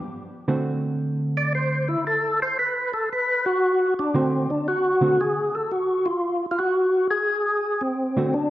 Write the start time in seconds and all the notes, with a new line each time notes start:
0.48 D3 A3 C4 F#4
1.37 D5
1.55 C5
1.88 E4
2.07 A4
2.42 C5
2.59 B4
2.93 A4
3.13 B4
3.46 F#4
3.99 D4
4.14 D3 A3 C4 F#4
4.50 D4
4.68 F#4
5.01 D3 A3 C4 F#4
5.21 G#4
5.55 A4
5.71 F#4
6.06 F4
6.51 F4
6.58 F#4
7.10 G#4
7.81 C4
8.17 D3 A3 C4 F#4
8.34 D4